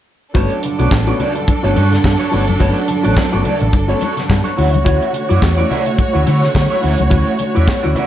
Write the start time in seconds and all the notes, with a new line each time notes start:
0.33 G1 F#3 A3 B3 C#4 D4 F#4 A4 B4 C#5, kick, closed hi-hat, muted conga
0.50 closed hi-hat
0.63 G2 D3, muted clean electric guitar stroke, closed hi-hat
0.79 B1 F#3 A3 B3 C#4 F#4 B4 D5, closed hi-hat
0.91 A1, muted clean electric guitar stroke, kick, snare, high conga
1.07 F#3 A3 B3 C#4 F#4 B4 D5, closed hi-hat
1.19 F#4 B4 D5, closed hi-hat, low conga
1.35 G2 D3, muted clean electric guitar stroke, closed hi-hat
1.48 muted clean electric guitar stroke, kick, closed hi-hat, muted conga
1.63 G1 F#3 A3 B3 C#4 F#4 B4 C#5
1.76 G2 F#4 B4 C#5, closed hi-hat, muted conga
1.91 G2 D3, muted clean electric guitar stroke, snare, closed hi-hat
2.04 G2 D3, muted clean electric guitar stroke, kick, snare, high conga
2.19 F#4 B4 C#5, closed hi-hat
2.31 G1 F#3 A3 B3 C#4 F#4 B4 C#5, open hi-hat
2.47 F#1 B3 C#4, muted clean electric guitar stroke, closed hi-hat, high conga
2.59 G1 F#3 A3 B3 C#4 F#4 B4 C#5, kick, closed hi-hat, muted conga
2.76 closed hi-hat
2.88 G2 D3, muted clean electric guitar stroke, closed hi-hat, muted conga
3.03 A1 F#3 A3 B3 C#4 F#4 B4 D5, closed hi-hat
3.16 muted clean electric guitar stroke, kick, snare, high conga
3.32 G1 F#3 A3 B3 C#4 F#4 B4 D5
3.44 F#4 B4 D5, closed hi-hat, low conga
3.60 A1 G2 D3, muted clean electric guitar stroke, closed hi-hat
3.73 G1, muted clean electric guitar stroke, kick, closed hi-hat, muted conga
3.88 F#3 A3 B3 C#4 F#4 B4 C#5, closed hi-hat
4.01 F#4 B4 C#5, closed hi-hat, muted conga
4.16 G2 D3, muted clean electric guitar stroke, snare, closed hi-hat
4.28 G2 D3, muted clean electric guitar stroke, kick, snare, high conga
4.44 F#4 B4 C#5, closed hi-hat
4.56 D2 E3 F#3 A3 C#4 E4 F#4 C#5, open hi-hat
4.72 C#2 F#3 C#4, muted clean electric guitar stroke, closed hi-hat, high conga
4.84 D2 E3 F#3 C#4 E4 F#4 C#5, kick, closed hi-hat, muted conga
5.02 closed hi-hat
5.12 D3, muted clean electric guitar stroke, closed hi-hat
5.29 F#2 E3 F#3 C#4 E4 F#4 D5, closed hi-hat
5.41 E2, muted clean electric guitar stroke, kick, snare, high conga
5.57 E3 F#3 C#4 E4 F#4 D5, closed hi-hat
5.70 E4 F#4 D5, closed hi-hat, low conga
5.86 D3, muted clean electric guitar stroke, closed hi-hat
5.98 muted clean electric guitar stroke, kick, closed hi-hat, muted conga
6.13 D2 E3 F#3 C#4 E4 F#4 C#5
6.26 D3 E4 F#4 C#5, closed hi-hat, muted conga
6.41 D3, muted clean electric guitar stroke, snare, closed hi-hat
6.54 D3, muted clean electric guitar stroke, kick, snare, high conga
6.70 E4 F#4 C#5
6.81 D2 E3 F#3 C#4 E4 F#4 C#5, open hi-hat
6.97 C#2 F#3 C#4, muted clean electric guitar stroke, closed hi-hat, high conga
7.09 D2 E3 F#3 C#4 E4 F#4 C#5, kick, closed hi-hat, muted conga
7.26 closed hi-hat
7.39 D3, muted clean electric guitar stroke, closed hi-hat, muted conga
7.54 E2 E3 F#3 C#4 E4 F#4 D5, closed hi-hat
7.68 kick, snare, high conga
7.82 D2 E3 F#3 C#4 E4 F#4 D5, closed hi-hat
7.95 E4 F#4 D5, closed hi-hat, low conga